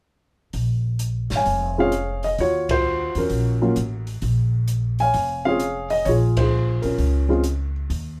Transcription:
0.53 A#1, open hi-hat
0.99 closed hi-hat
1.30 G#1, snare, open hi-hat
1.35 C#5 F5 G#5
1.46 F1, open hi-hat
1.78 G#3 C4 C#4 F4 G#4 C#5 F5
1.92 closed hi-hat
2.23 D#5, open hi-hat
2.38 D#2 F4 F#4 C#5, open hi-hat
2.69 F4 F#4 C5, kick, ride
3.15 E2 C#4 F#4 A#4, open hi-hat
3.30 A#1, open hi-hat
3.62 F#3 A#3 C#4 F4
3.76 A1, closed hi-hat
4.07 open hi-hat
4.22 A#1, open hi-hat
4.68 closed hi-hat
4.99 C#5 F5 G#5, open hi-hat
5.14 F1, open hi-hat
5.45 G#3 C4 C#4 F4 G#4 C#5 F5
5.60 closed hi-hat
5.90 D#5, open hi-hat
6.05 A#1 F4 G#4 C#5, open hi-hat
6.37 F4 G#4 C5, kick, ride
6.82 B1 C#4 F4 A#4, open hi-hat
6.98 C#2, open hi-hat
7.29 G#3 C4 C#4 F4
7.44 closed hi-hat
7.90 D#2, open hi-hat

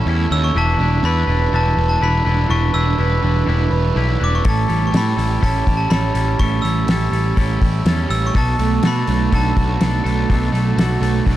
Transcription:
Already playing: A2 C#4 A4
0.06 E2 E3 G3 C#4 E4
0.31 D#2 G3 C#4 E4 E6
0.44 C#6
0.55 E1 E3 G3 D4 E4 B4 A5
0.79 E1 D4 E4 B4
1.03 E2 G3 D4 E4 B4 B5
1.27 E1 D4 E4 B4
1.52 E1 E3 G3 D4 E4 B4 A5
1.76 E1 B4
1.89 A5
2.00 E1 G3 D4 E4 B4 B5
2.25 E1 D4 E4 B4
2.49 E1 E3 G3 D4 E4 B4 C#6
2.72 E1 D4 E4 B4 E6
2.97 E1 G3 D4 E4 B4
3.22 E1 D4 E4 B4
3.46 E1 E3 G3 D4 E4 B4
3.71 E1 B4
3.95 B1 G3 D4 E4 B4
4.18 E1 D4 E4 B4
4.23 D4 D6
4.35 C#6
4.44 A1 A2 E3 G3 C#4 E4 A4, kick, open hi-hat
4.49 A5
4.68 A1 G3 C#4 E4 A4, open hi-hat
4.87 C#6
4.92 A2 G3 C#4 E4 G4 A4, snare, open hi-hat
4.97 B5
5.17 A1 G3 C#4 E4 A4, open hi-hat
5.40 A1 A2 E3 G3 C#4 E4 A4 A5, kick, open hi-hat
5.66 A1 G4, kick, open hi-hat
5.77 A5
5.89 A1 G3 C#4 E4 A4 B5, snare, open hi-hat
6.14 A1 G3 C#4 E4 A4, open hi-hat
6.39 A1 A2 E3 G3 C#4 E4 A4 C#6, kick, open hi-hat
6.62 A1 C#4 E4 A4 E6, open hi-hat
6.66 G3
6.87 A1 G3 C#4 E4 G4 A4, snare, open hi-hat
7.12 A1 G3 C#4 E4 A4, open hi-hat
7.36 A1 A2 E3 G3 C#4 E4 A4, kick, open hi-hat
7.61 A1 G4, kick, open hi-hat
7.85 E2 G3 C#4 E4 A4, snare, open hi-hat
8.09 A1 G3 C#4 E4 A4 E6, open hi-hat
8.27 C#6
8.34 B1 B2 F#3 A3 D4 A4 A5, kick, open hi-hat
8.58 B1 A3 D4 A4, open hi-hat
8.82 B2 F#3 A3 D4 F#4 A4, snare, open hi-hat
8.87 B5
9.07 B1 A3 D4 A4, open hi-hat
9.31 B1 B2 F#3 A3 D4 A4 A5, kick, open hi-hat
9.56 B1 F#4, kick, open hi-hat
9.79 B1 F#3 A3 D4 A4, snare, open hi-hat
10.04 B1 A3 D4 A4, open hi-hat
10.28 B1 B2 F#3 A3 D4 A4, kick, open hi-hat
10.53 B1 A3 D4 A4, open hi-hat
10.77 B1 F#3 A3 D4 F#4 A4, snare, open hi-hat
11.01 B1 A3 D4 A4, open hi-hat
11.26 B1 B2 F#3 A3 D4 A4, kick, open hi-hat

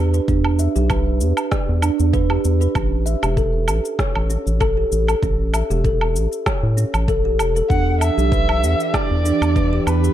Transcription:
Already playing: E2
0.14 B4, shaker
0.28 E2 D4, kick, shaker
0.45 low woodblock
0.59 E5, shaker
0.76 B1 G4, shaker
0.90 B4, kick, low woodblock, shaker
1.21 E2, shaker
1.37 low woodblock, shaker
1.51 D5, kick, cross-stick, shaker
1.69 E2
1.82 D4, low woodblock, shaker
2.00 E2, shaker
2.13 B4, kick, shaker
2.30 G4, low woodblock
2.45 E2, shaker
2.61 B4, shaker
2.75 A1 C#4, kick, low woodblock, shaker
3.06 E5, shaker
3.23 E1 G4, low woodblock, shaker
3.37 A4, kick, shaker
3.68 A1, low woodblock, shaker
3.85 shaker
3.99 C#5, kick, cross-stick, shaker
4.15 A1, low woodblock
4.30 C#4, shaker
4.47 A1, shaker
4.60 A4, kick, low woodblock, shaker
4.77 G4
4.92 A1, shaker
5.08 A4, low woodblock, shaker
5.23 A1 C#4, kick, shaker
5.53 E5, low woodblock, shaker
5.70 E1 G4, shaker
5.85 A4, kick, shaker
6.01 low woodblock
6.15 A1, shaker
6.33 shaker
6.46 C#5, kick, cross-stick, low woodblock, shaker
6.63 A2
6.77 C#4, shaker
6.94 A1, low woodblock, shaker
7.08 A4, kick, shaker
7.25 G4
7.39 E1, low woodblock, shaker
7.56 A4, shaker
7.69 E2 E3 D4 G4 F#5, kick, shaker
8.01 E5, low woodblock, shaker
8.18 B1 G4, shaker
8.32 B4, kick, shaker
8.49 low woodblock
8.63 E2, shaker
8.80 shaker
8.94 D5, kick, cross-stick, low woodblock, shaker
9.11 E2
9.25 D4, shaker
9.42 E2, low woodblock, shaker
9.56 B4, kick, shaker
9.73 G4
9.87 E2 B4, low woodblock, shaker
10.04 B4, shaker

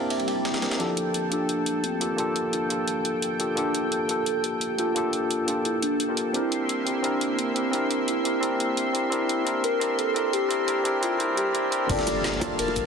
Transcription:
Already playing: A#3 C4 D4 E4 G4 A#4 D5 F5
0.10 E5, closed hi-hat, ride, swell
0.20 ride
0.27 G5, closed hi-hat, ride
0.45 snare, closed hi-hat, ride
0.54 snare, ride
0.61 C4 D4 E4 G4 A#4, snare, closed hi-hat, ride
0.71 snare, ride
0.78 G1 F3 A#3 D4 E4 G4 A4 G5, closed hi-hat
0.97 closed hi-hat
1.14 closed hi-hat
1.30 A#3 D4 F4 G4 A4, closed hi-hat
1.49 F1, closed hi-hat
1.66 D2, closed hi-hat
1.84 C4, closed hi-hat
2.00 A#3 D4 F4 G4 A4, closed hi-hat
2.10 G1
2.17 A#3 D4 F4 G4 A4, closed hi-hat
2.27 G1
2.36 closed hi-hat
2.53 F4, closed hi-hat
2.69 A#3 D4 F4 G4 A4, closed hi-hat
2.88 G1, closed hi-hat
3.05 closed hi-hat
3.22 G1, closed hi-hat
3.39 A#3 D4 F4 G4 A4, closed hi-hat
3.55 A#3 D4 F4 G4 A4, closed hi-hat
3.75 closed hi-hat
3.92 closed hi-hat
4.07 A#3 D4 F4 G4 A4, closed hi-hat
4.26 closed hi-hat
4.44 G4, closed hi-hat
4.61 closed hi-hat
4.78 D2 A#3 D4 F4 G4 A4, closed hi-hat
4.94 A#3 D4 F4 G4 A4, closed hi-hat
5.13 G2, closed hi-hat
5.31 closed hi-hat
5.46 G1 A#3 D4 F4 G4 A4, closed hi-hat
5.65 G2 E4, closed hi-hat
5.82 D4, closed hi-hat
6.00 closed hi-hat
6.08 A#3 D4 F4 G4 A#4
6.17 closed hi-hat
6.33 C2 A#3 C4 D4 E4 G4 A#4 E5 C6, closed hi-hat
6.52 closed hi-hat
6.69 closed hi-hat
6.85 C4 D4 E4 G4 A#4, closed hi-hat
7.02 A#1 C4 D4 E4 G4 A#4, closed hi-hat
7.21 G1, closed hi-hat
7.38 C4, closed hi-hat
7.54 C4 D4 E4 G4 A#4, closed hi-hat
7.65 C2
7.72 C4 D4 E4 G4 A#4, closed hi-hat
7.82 C2
7.91 closed hi-hat
8.08 E4, closed hi-hat
8.24 C4 D4 E4 G4 A#4, closed hi-hat
8.41 C2 C4 D4 E4 G4 A#4, closed hi-hat
8.60 closed hi-hat
8.77 C2, closed hi-hat
8.93 C4 D4 E4 G4 A#4, closed hi-hat
9.10 C4 D4 E4 G4 A#4, closed hi-hat
9.29 closed hi-hat
9.45 C4 D4 E4 G4 A#4, closed hi-hat
9.64 A#4, closed hi-hat
9.80 C4 D4 E4 G4 A#4, closed hi-hat
9.98 A4, closed hi-hat
10.14 C4 D4 E4 G4 A#4, closed hi-hat
10.33 G1 G4, closed hi-hat
10.49 C4 D4 E4 G4 A#4, closed hi-hat
10.66 G1 C4 D4 E4 G4 A#4, closed hi-hat
10.83 C4 D4 E4 G4 A#4, closed hi-hat
11.01 C2 C4 D4 E4 F4 G4 A#4, closed hi-hat
11.18 C4 D4 E4 G4 A#4, closed hi-hat, swell
11.35 E2 C4 D4 E4 G4 A#4, closed hi-hat
11.53 C4 D4 E4 G4 A#4, closed hi-hat
11.70 C4 D4 E4 G4 A#4, closed hi-hat
11.88 G1 A#3 D4 F4 G4 A4 D5 F5 A5, kick, closed hi-hat, crash, ride, impact
11.99 snare
12.07 closed hi-hat, ride, high bongo, cabasa
12.24 snare, closed hi-hat, ride
12.33 ride
12.40 A#3 D4 F4 G4 A5, kick, closed hi-hat, ride, high bongo, cabasa
12.59 F1 A#4, closed hi-hat, ride
12.68 high bongo
12.76 D2, kick, closed hi-hat, ride, cabasa

